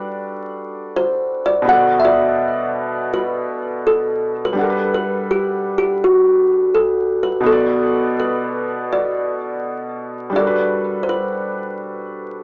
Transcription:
Already playing: felt piano G3 D4 F#4 A4 D5, kalimba B4
0.96 kalimba C5
1.46 kalimba D5
1.62 felt piano B2 B3
1.67 felt piano F#4 A4, kalimba F#5
1.73 felt piano D5
2.00 kalimba E5
2.05 kalimba D5
3.14 kalimba B4
3.87 kalimba A4
4.45 kalimba B4
4.53 felt piano G3 D4
4.58 felt piano A4 F#5
4.64 felt piano A#4
4.70 felt piano B4
4.94 kalimba B4
5.31 kalimba G4
5.78 kalimba G4
6.04 kalimba F#4
6.75 kalimba A4
7.23 kalimba B4
7.40 felt piano B2 B3
7.46 felt piano F#4 A4, kalimba A4
7.52 felt piano D5
8.20 kalimba B4
8.93 kalimba D5
10.30 felt piano G3 D4
10.35 felt piano F#4 A4, kalimba D5
10.41 felt piano A#4
10.47 felt piano B4
11.03 kalimba C5
11.09 kalimba B4

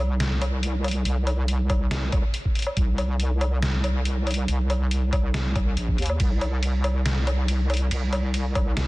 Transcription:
Already playing: wobble bass C2
0.20 snare, closed hi-hat
0.42 closed hi-hat, low woodblock
0.63 closed hi-hat
0.84 closed hi-hat, low woodblock
0.88 closed hi-hat
0.91 closed hi-hat
1.05 wobble bass C2, closed hi-hat
1.27 closed hi-hat, low woodblock
1.48 closed hi-hat
1.70 kick, closed hi-hat, low woodblock
1.91 wobble bass C2, snare, closed hi-hat
2.12 wobble bass C2, kick, closed hi-hat, low woodblock
2.34 closed hi-hat
2.45 kick
2.55 closed hi-hat
2.59 closed hi-hat
2.62 closed hi-hat
2.67 low woodblock
2.77 wobble bass C2, kick, closed hi-hat
2.98 closed hi-hat, low woodblock
3.20 closed hi-hat
3.41 closed hi-hat, low woodblock
3.62 snare, closed hi-hat
3.84 closed hi-hat, low woodblock
4.05 closed hi-hat
4.27 closed hi-hat, low woodblock
4.31 closed hi-hat
4.34 closed hi-hat
4.48 wobble bass C2, closed hi-hat
4.70 closed hi-hat, low woodblock
4.91 closed hi-hat
5.13 kick, closed hi-hat, low woodblock
5.34 snare, closed hi-hat
5.56 kick, closed hi-hat, low woodblock
5.77 wobble bass A#1, closed hi-hat
5.88 kick
5.98 wobble bass D#2, closed hi-hat
6.02 closed hi-hat
6.06 closed hi-hat, low woodblock
6.20 wobble bass C2, kick, closed hi-hat, ride
6.41 closed hi-hat, low woodblock
6.63 closed hi-hat, ride
6.84 closed hi-hat, low woodblock
7.06 snare, closed hi-hat, ride
7.27 closed hi-hat, low woodblock
7.48 closed hi-hat, ride
7.70 closed hi-hat, low woodblock
7.74 closed hi-hat
7.77 closed hi-hat
7.91 wobble bass C2, closed hi-hat, ride
8.13 closed hi-hat, low woodblock
8.34 closed hi-hat, ride
8.55 kick, closed hi-hat, low woodblock
8.77 wobble bass C2, snare, closed hi-hat, ride

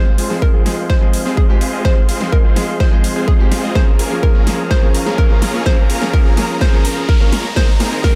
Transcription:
Already playing: detuned saw bass F1, string section G#4 C5 F5 C6, synth pluck C5, riser
0.18 detuned saw bass F1, supersaw synth G#3 C4 F4 G#4 C5, open hi-hat
0.30 grand piano F3 G#3 C4 G#4, snare
0.42 synth pluck A#4, kick
0.54 detuned saw bass F1, supersaw synth G#3 C4 F4 G#4 C5
0.65 grand piano F3 G#3 C4 G#4, snare, open hi-hat
0.90 detuned saw bass F1, supersaw synth G#3 C4 F4 G#4 C5, synth pluck C5, kick, snare
1.01 grand piano F3 G#3 C4 G#4
1.13 open hi-hat
1.25 detuned saw bass F1, supersaw synth G#3 C4 F4 G#4 C5, snare
1.37 synth pluck G#4, kick
1.49 detuned saw bass F1, grand piano F3 G#3 C4 G4, supersaw synth G#3 C4 F4 G#4 C5
1.61 open hi-hat
1.73 detuned saw bass F1, supersaw synth G#3 C4 F4 G#4 D#5
1.84 detuned saw bass F1, grand piano F3 G#3 C4 G#4, supersaw synth G#3 C4 F4 G#4 C5, synth pluck C5, kick, snare
2.09 detuned saw bass F1, supersaw synth G#3 C4 F4 G#4 C5, open hi-hat
2.20 grand piano F3 G#3 C4 G#4, snare
2.32 synth pluck A#4, kick
2.44 detuned saw bass F1, supersaw synth G#3 C4 F4 G#4 C5
2.56 grand piano F3 G#3 C4 G#4, snare, open hi-hat
2.80 detuned saw bass F1, supersaw synth G#3 C4 F4 G#4 C5, synth pluck C5, kick, snare
2.92 grand piano F3 G#3 C4 G#4
3.04 open hi-hat
3.16 detuned saw bass F1, supersaw synth G#3 C4 F4 G#4 C5
3.28 synth pluck G#4, kick
3.39 detuned saw bass F2, grand piano F3 G#3 C4 G4, supersaw synth G#3 C4 F4 G#4 C5
3.52 snare, open hi-hat
3.63 detuned saw bass F1, supersaw synth G#3 C4 F4 G#4 D#5
3.75 detuned saw bass C#2, grand piano F3 A#3 C#4 G#4, supersaw synth A#3 C#4 F4 G#4 A#4, string section C#4 F5 A#5, synth pluck C5, kick, snare
3.99 detuned saw bass C#2, supersaw synth A#3 C#4 F4 G#4 A#4, open hi-hat
4.10 grand piano F3 A#3 C#4 G#4
4.23 synth pluck A#4, kick
4.35 detuned saw bass C#2, supersaw synth A#3 C#4 F4 G#4 A#4
4.46 grand piano F3 A#3 C#4 G#4, snare, open hi-hat
4.71 detuned saw bass C#2, supersaw synth A#3 C#4 F4 G#4 A#4, synth pluck C5, kick, snare
4.82 grand piano F3 A#3 C#4 G#4
4.94 open hi-hat
5.06 detuned saw bass C#2, supersaw synth A#3 C#4 F4 G#4 A#4, snare
5.18 synth pluck A#4, kick
5.30 detuned saw bass C#2, grand piano F3 A#3 C#4 F4, supersaw synth A#3 C#4 F4 G#4 A#4
5.42 snare, open hi-hat
5.54 detuned saw bass C#2, supersaw synth A#3 C#4 F4 G#4 C#5
5.65 detuned saw bass C#2, grand piano F3 A#3 C#4 G#4, supersaw synth A#3 C#4 F4 G#4 A#4, synth pluck C5, kick, snare
5.90 detuned saw bass C#2, supersaw synth A#3 C#4 F4 G#4 A#4, open hi-hat
6.01 grand piano F3 A#3 C#4 G#4, snare
6.13 synth pluck A#4, kick
6.25 detuned saw bass C#2, supersaw synth A#3 C#4 F4 G#4 A#4
6.37 grand piano F3 A#3 C#4 G#4, snare, open hi-hat
6.61 detuned saw bass C#2, supersaw synth A#3 C#4 F4 G#4 A#4, synth pluck C5, kick, snare
6.72 grand piano F3 A#3 C#4 G#4
6.84 grand piano F3 A#3 C#4 A#4, open hi-hat
6.96 grand piano F3 A#3 C#4 G#4
7.09 synth pluck A#4, kick
7.20 detuned saw bass C#2, grand piano F3 A#3 C#4 A#4, supersaw synth A#3 C#4 F4 G#4 C#5
7.32 snare, open hi-hat
7.56 detuned saw bass G#1, grand piano D#3 A#3 C4 G#4, supersaw synth A#3 C4 D#4 G#4 A#4, string section C5 D#5, synth pluck C5, kick, snare
7.80 detuned saw bass G#1, supersaw synth A#3 C4 D#4 G#4 A#4, snare, open hi-hat
7.91 grand piano D#3 A#3 C4 G#4
8.04 synth pluck A#4, kick, snare

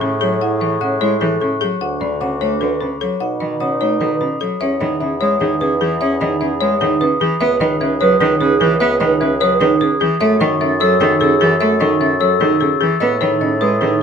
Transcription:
Already playing: bassoon A2, clarinet G#4
0.00 cello C#3, marimba A4, glockenspiel C#6
0.21 cello F#3, marimba G#4, vibraphone C#5
0.41 vibraphone E4, marimba F#5
0.61 cello E3, marimba E5, glockenspiel C#6
0.81 cello C#3, vibraphone C#5, marimba F#5, glockenspiel F#6
1.00 cello G#3, vibraphone E4, marimba C#5
1.21 cello E3, marimba G#4, vibraphone A4, glockenspiel F#6
1.41 cello C#3, marimba A4, glockenspiel C#6
1.61 cello F#3, marimba G#4, vibraphone C#5
1.81 bassoon D2, vibraphone D4, clarinet F#4, marimba F#5
2.01 cello D3, marimba D5, glockenspiel B5
2.21 cello C#3, vibraphone C#5, marimba F#5, glockenspiel D6
2.41 cello A3, vibraphone D4, marimba C#5
2.61 cello D3, marimba A4, vibraphone B4, glockenspiel D6
2.81 cello C#3, marimba B4, glockenspiel B5
3.01 cello F#3, marimba A4, vibraphone C#5
3.20 bassoon B2, vibraphone D#4, clarinet D#4, marimba F#5
3.40 cello D#3, marimba D#5, glockenspiel B5
3.60 cello C#3, vibraphone C#5, marimba F#5, glockenspiel D#6
3.80 cello A3, vibraphone D#4, marimba C#5
4.00 cello D#3, marimba A4, vibraphone B4, glockenspiel D#6
4.21 cello C#3, marimba B4, glockenspiel B5
4.40 cello F#3, marimba A4, vibraphone C#5
4.60 bassoon E2, cello C#4, clarinet G#4, vibraphone C#5, marimba E5
4.81 cello D#3, vibraphone D#4, clarinet G#4, marimba D#5, glockenspiel B5
5.01 cello C#3, clarinet G#4, marimba E5, glockenspiel B5
5.20 cello G#3, clarinet G#4, marimba C#5, vibraphone C#5, glockenspiel D#6
5.40 cello D#3, vibraphone D#4, clarinet G#4, marimba G#4
5.61 cello C#3, clarinet G#4, vibraphone B4, marimba B4, glockenspiel D#6
5.81 cello E3, marimba G#4, clarinet G#4, glockenspiel B5
6.01 cello C#4, clarinet G#4, vibraphone C#5, marimba E5
6.21 cello D#3, vibraphone D#4, clarinet G#4, marimba D#5, glockenspiel B5
6.41 cello C#3, clarinet G#4, marimba E5, glockenspiel B5
6.60 cello G#3, clarinet G#4, marimba C#5, vibraphone C#5, glockenspiel D#6
6.81 cello D#3, vibraphone D#4, clarinet G#4, marimba G#4
7.01 cello C#3, clarinet G#4, vibraphone B4, marimba B4, glockenspiel D#6
7.20 cello E3, marimba G#4, glockenspiel B5
7.41 bassoon C#2, cello B3, vibraphone B4, clarinet B4, marimba E5
7.61 cello D#3, vibraphone D#4, clarinet B4, marimba D#5, glockenspiel B5
7.81 cello C#3, clarinet B4, marimba E5, glockenspiel G#6
8.00 cello F#3, vibraphone B4, clarinet B4, marimba C#5, glockenspiel D#6
8.20 cello D#3, vibraphone D#4, marimba G#4, clarinet B4
8.41 cello C#3, vibraphone G#4, marimba B4, clarinet B4, glockenspiel D#6
8.60 cello E3, marimba G#4, clarinet B4, glockenspiel G#6
8.80 cello B3, vibraphone B4, clarinet B4, marimba E5
9.00 cello D#3, vibraphone D#4, clarinet B4, marimba D#5, glockenspiel B5
9.21 cello C#3, clarinet B4, marimba E5, glockenspiel G#6
9.41 cello F#3, vibraphone B4, clarinet B4, marimba C#5, glockenspiel D#6
9.61 cello D#3, vibraphone D#4, marimba G#4, clarinet B4
9.81 cello C#3, vibraphone G#4, clarinet B4, marimba B4, glockenspiel D#6
10.00 cello E3, marimba G#4, glockenspiel G#6
10.20 bassoon F#2, cello A3, vibraphone A4, clarinet A4, marimba E5
10.40 cello D#3, vibraphone D#4, clarinet A4, marimba D#5, glockenspiel C#6
10.60 cello C#3, clarinet A4, marimba E5, glockenspiel A6
10.80 cello F#3, vibraphone A4, clarinet A4, marimba C#5, glockenspiel E6
11.00 cello D#3, vibraphone D#4, marimba G#4, clarinet A4
11.20 cello C#3, vibraphone G#4, marimba A4, clarinet A4, glockenspiel E6
11.41 cello E3, marimba G#4, clarinet A4, glockenspiel A6
11.60 cello A3, vibraphone A4, clarinet A4, marimba E5
11.80 cello D#3, vibraphone D#4, clarinet A4, marimba D#5, glockenspiel C#6
12.00 cello C#3, clarinet A4, marimba E5, glockenspiel A6
12.20 cello F#3, vibraphone A4, clarinet A4, marimba C#5, glockenspiel E6
12.40 cello D#3, vibraphone D#4, marimba G#4, clarinet A4
12.60 cello C#3, vibraphone G#4, marimba A4, clarinet A4, glockenspiel E6
12.81 cello E3, marimba G#4, glockenspiel A6
13.00 bassoon A2, cello B3, clarinet G#4, vibraphone B4, marimba D#5
13.21 cello D#3, vibraphone D#4, clarinet G#4, marimba C#5, glockenspiel B5
13.41 cello C#3, clarinet G#4, marimba D#5, glockenspiel A6
13.61 cello G#3, clarinet G#4, marimba B4, vibraphone B4, glockenspiel D#6
13.81 cello D#3, vibraphone D#4, marimba G#4, clarinet G#4

